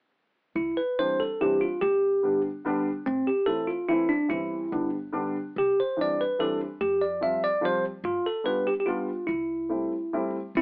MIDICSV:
0, 0, Header, 1, 4, 480
1, 0, Start_track
1, 0, Key_signature, 0, "major"
1, 0, Tempo, 415800
1, 665, Time_signature, 3, 2, 24, 8
1, 12256, End_track
2, 0, Start_track
2, 0, Title_t, "Tine electric piano"
2, 0, Program_c, 0, 4
2, 645, Note_on_c, 0, 64, 71
2, 890, Note_on_c, 0, 71, 66
2, 912, Note_off_c, 0, 64, 0
2, 1143, Note_on_c, 0, 72, 90
2, 1147, Note_off_c, 0, 71, 0
2, 1384, Note_on_c, 0, 69, 67
2, 1404, Note_off_c, 0, 72, 0
2, 1629, Note_on_c, 0, 67, 72
2, 1635, Note_off_c, 0, 69, 0
2, 1859, Note_on_c, 0, 65, 70
2, 1861, Note_off_c, 0, 67, 0
2, 2095, Note_on_c, 0, 67, 85
2, 2111, Note_off_c, 0, 65, 0
2, 2780, Note_off_c, 0, 67, 0
2, 3535, Note_on_c, 0, 60, 96
2, 3777, Note_on_c, 0, 67, 67
2, 3792, Note_off_c, 0, 60, 0
2, 3998, Note_on_c, 0, 69, 89
2, 4022, Note_off_c, 0, 67, 0
2, 4240, Note_on_c, 0, 65, 68
2, 4261, Note_off_c, 0, 69, 0
2, 4486, Note_on_c, 0, 64, 83
2, 4492, Note_off_c, 0, 65, 0
2, 4721, Note_on_c, 0, 62, 75
2, 4744, Note_off_c, 0, 64, 0
2, 4947, Note_off_c, 0, 62, 0
2, 4961, Note_on_c, 0, 64, 81
2, 5649, Note_off_c, 0, 64, 0
2, 6446, Note_on_c, 0, 67, 81
2, 6691, Note_off_c, 0, 67, 0
2, 6695, Note_on_c, 0, 72, 65
2, 6928, Note_off_c, 0, 72, 0
2, 6942, Note_on_c, 0, 74, 75
2, 7167, Note_on_c, 0, 71, 67
2, 7181, Note_off_c, 0, 74, 0
2, 7390, Note_on_c, 0, 69, 84
2, 7404, Note_off_c, 0, 71, 0
2, 7619, Note_off_c, 0, 69, 0
2, 7859, Note_on_c, 0, 67, 78
2, 8098, Note_on_c, 0, 74, 67
2, 8115, Note_off_c, 0, 67, 0
2, 8343, Note_on_c, 0, 76, 76
2, 8344, Note_off_c, 0, 74, 0
2, 8570, Note_off_c, 0, 76, 0
2, 8587, Note_on_c, 0, 74, 87
2, 8824, Note_off_c, 0, 74, 0
2, 8834, Note_on_c, 0, 72, 95
2, 9052, Note_off_c, 0, 72, 0
2, 9292, Note_on_c, 0, 65, 100
2, 9539, Note_on_c, 0, 69, 70
2, 9544, Note_off_c, 0, 65, 0
2, 9753, Note_off_c, 0, 69, 0
2, 9763, Note_on_c, 0, 71, 79
2, 10007, Note_on_c, 0, 67, 76
2, 10016, Note_off_c, 0, 71, 0
2, 10077, Note_off_c, 0, 67, 0
2, 10160, Note_on_c, 0, 67, 56
2, 10227, Note_on_c, 0, 65, 67
2, 10241, Note_off_c, 0, 67, 0
2, 10700, Note_on_c, 0, 64, 70
2, 10728, Note_off_c, 0, 65, 0
2, 11886, Note_off_c, 0, 64, 0
2, 12200, Note_on_c, 0, 64, 86
2, 12205, Note_on_c, 0, 60, 73
2, 12256, Note_off_c, 0, 60, 0
2, 12256, Note_off_c, 0, 64, 0
2, 12256, End_track
3, 0, Start_track
3, 0, Title_t, "Upright piano"
3, 0, Program_c, 1, 0
3, 1139, Note_on_c, 1, 52, 46
3, 1147, Note_on_c, 1, 55, 46
3, 1148, Note_on_c, 1, 60, 48
3, 1157, Note_on_c, 1, 62, 51
3, 1394, Note_off_c, 1, 52, 0
3, 1398, Note_off_c, 1, 55, 0
3, 1398, Note_off_c, 1, 60, 0
3, 1403, Note_off_c, 1, 62, 0
3, 1623, Note_on_c, 1, 55, 52
3, 1626, Note_on_c, 1, 52, 57
3, 1628, Note_on_c, 1, 60, 55
3, 1634, Note_on_c, 1, 62, 60
3, 1876, Note_off_c, 1, 55, 0
3, 1877, Note_off_c, 1, 52, 0
3, 1878, Note_off_c, 1, 60, 0
3, 1881, Note_off_c, 1, 62, 0
3, 2570, Note_on_c, 1, 50, 50
3, 2576, Note_on_c, 1, 55, 52
3, 2581, Note_on_c, 1, 59, 41
3, 2594, Note_on_c, 1, 62, 57
3, 2825, Note_off_c, 1, 50, 0
3, 2828, Note_off_c, 1, 55, 0
3, 2831, Note_off_c, 1, 59, 0
3, 2837, Note_off_c, 1, 62, 0
3, 3056, Note_on_c, 1, 50, 67
3, 3066, Note_on_c, 1, 55, 71
3, 3069, Note_on_c, 1, 59, 67
3, 3079, Note_on_c, 1, 62, 78
3, 3307, Note_off_c, 1, 50, 0
3, 3312, Note_off_c, 1, 55, 0
3, 3313, Note_off_c, 1, 59, 0
3, 3318, Note_off_c, 1, 62, 0
3, 4003, Note_on_c, 1, 52, 45
3, 4007, Note_on_c, 1, 57, 47
3, 4008, Note_on_c, 1, 60, 47
3, 4016, Note_on_c, 1, 64, 46
3, 4256, Note_off_c, 1, 52, 0
3, 4258, Note_off_c, 1, 57, 0
3, 4258, Note_off_c, 1, 60, 0
3, 4262, Note_off_c, 1, 64, 0
3, 4489, Note_on_c, 1, 52, 60
3, 4491, Note_on_c, 1, 57, 52
3, 4498, Note_on_c, 1, 60, 51
3, 4505, Note_on_c, 1, 64, 71
3, 4738, Note_off_c, 1, 52, 0
3, 4739, Note_off_c, 1, 57, 0
3, 4743, Note_off_c, 1, 60, 0
3, 4746, Note_off_c, 1, 64, 0
3, 4946, Note_on_c, 1, 52, 59
3, 4955, Note_on_c, 1, 55, 42
3, 4956, Note_on_c, 1, 64, 48
3, 4964, Note_on_c, 1, 60, 47
3, 5346, Note_off_c, 1, 52, 0
3, 5351, Note_off_c, 1, 55, 0
3, 5351, Note_off_c, 1, 64, 0
3, 5356, Note_off_c, 1, 60, 0
3, 5444, Note_on_c, 1, 55, 42
3, 5448, Note_on_c, 1, 50, 53
3, 5451, Note_on_c, 1, 59, 42
3, 5451, Note_on_c, 1, 62, 54
3, 5697, Note_off_c, 1, 55, 0
3, 5698, Note_off_c, 1, 50, 0
3, 5700, Note_off_c, 1, 59, 0
3, 5700, Note_off_c, 1, 62, 0
3, 5916, Note_on_c, 1, 55, 61
3, 5920, Note_on_c, 1, 50, 70
3, 5920, Note_on_c, 1, 59, 51
3, 5928, Note_on_c, 1, 62, 73
3, 6177, Note_off_c, 1, 55, 0
3, 6179, Note_off_c, 1, 50, 0
3, 6179, Note_off_c, 1, 59, 0
3, 6183, Note_off_c, 1, 62, 0
3, 6887, Note_on_c, 1, 52, 55
3, 6895, Note_on_c, 1, 55, 41
3, 6901, Note_on_c, 1, 60, 45
3, 6903, Note_on_c, 1, 62, 54
3, 7147, Note_off_c, 1, 52, 0
3, 7151, Note_off_c, 1, 55, 0
3, 7154, Note_off_c, 1, 60, 0
3, 7155, Note_off_c, 1, 62, 0
3, 7375, Note_on_c, 1, 55, 50
3, 7380, Note_on_c, 1, 52, 65
3, 7387, Note_on_c, 1, 60, 50
3, 7393, Note_on_c, 1, 62, 65
3, 7629, Note_off_c, 1, 55, 0
3, 7631, Note_off_c, 1, 52, 0
3, 7635, Note_off_c, 1, 60, 0
3, 7638, Note_off_c, 1, 62, 0
3, 8323, Note_on_c, 1, 53, 51
3, 8329, Note_on_c, 1, 60, 50
3, 8332, Note_on_c, 1, 55, 47
3, 8337, Note_on_c, 1, 65, 55
3, 8577, Note_off_c, 1, 53, 0
3, 8580, Note_off_c, 1, 60, 0
3, 8581, Note_off_c, 1, 55, 0
3, 8584, Note_off_c, 1, 65, 0
3, 8786, Note_on_c, 1, 53, 61
3, 8792, Note_on_c, 1, 55, 64
3, 8802, Note_on_c, 1, 60, 58
3, 8806, Note_on_c, 1, 65, 66
3, 9045, Note_off_c, 1, 53, 0
3, 9048, Note_off_c, 1, 55, 0
3, 9053, Note_off_c, 1, 60, 0
3, 9055, Note_off_c, 1, 65, 0
3, 9743, Note_on_c, 1, 55, 57
3, 9745, Note_on_c, 1, 59, 49
3, 9752, Note_on_c, 1, 62, 49
3, 9760, Note_on_c, 1, 65, 52
3, 9999, Note_off_c, 1, 55, 0
3, 10000, Note_off_c, 1, 59, 0
3, 10003, Note_off_c, 1, 62, 0
3, 10008, Note_off_c, 1, 65, 0
3, 10230, Note_on_c, 1, 55, 60
3, 10237, Note_on_c, 1, 59, 55
3, 10244, Note_on_c, 1, 62, 50
3, 10252, Note_on_c, 1, 65, 66
3, 10482, Note_off_c, 1, 55, 0
3, 10485, Note_off_c, 1, 59, 0
3, 10488, Note_off_c, 1, 62, 0
3, 10493, Note_off_c, 1, 65, 0
3, 11188, Note_on_c, 1, 60, 40
3, 11190, Note_on_c, 1, 57, 45
3, 11195, Note_on_c, 1, 55, 43
3, 11201, Note_on_c, 1, 64, 52
3, 11444, Note_off_c, 1, 60, 0
3, 11445, Note_off_c, 1, 57, 0
3, 11447, Note_off_c, 1, 55, 0
3, 11450, Note_off_c, 1, 64, 0
3, 11695, Note_on_c, 1, 57, 51
3, 11696, Note_on_c, 1, 55, 63
3, 11703, Note_on_c, 1, 60, 57
3, 11703, Note_on_c, 1, 64, 66
3, 11945, Note_off_c, 1, 57, 0
3, 11946, Note_off_c, 1, 55, 0
3, 11949, Note_off_c, 1, 60, 0
3, 11949, Note_off_c, 1, 64, 0
3, 12256, End_track
4, 0, Start_track
4, 0, Title_t, "Upright bass"
4, 0, Program_c, 2, 32
4, 640, Note_on_c, 2, 36, 74
4, 810, Note_off_c, 2, 36, 0
4, 2099, Note_on_c, 2, 31, 72
4, 2724, Note_off_c, 2, 31, 0
4, 3544, Note_on_c, 2, 33, 82
4, 3703, Note_off_c, 2, 33, 0
4, 4970, Note_on_c, 2, 31, 78
4, 5284, Note_off_c, 2, 31, 0
4, 5450, Note_on_c, 2, 31, 69
4, 6082, Note_off_c, 2, 31, 0
4, 6421, Note_on_c, 2, 36, 68
4, 6584, Note_off_c, 2, 36, 0
4, 7858, Note_on_c, 2, 41, 83
4, 8478, Note_off_c, 2, 41, 0
4, 9277, Note_on_c, 2, 43, 80
4, 9441, Note_off_c, 2, 43, 0
4, 10719, Note_on_c, 2, 36, 71
4, 11349, Note_off_c, 2, 36, 0
4, 12180, Note_on_c, 2, 36, 77
4, 12256, Note_off_c, 2, 36, 0
4, 12256, End_track
0, 0, End_of_file